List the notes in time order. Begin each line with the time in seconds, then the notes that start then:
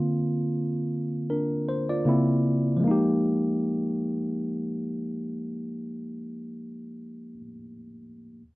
Already playing: D3 A#3 C4 F4
1.30 D4 A#4
1.69 C5
1.89 F4 D5
2.05 C#3 A#3 C4 E4
2.77 F3 G#3
2.84 A#3 D#4
2.91 G4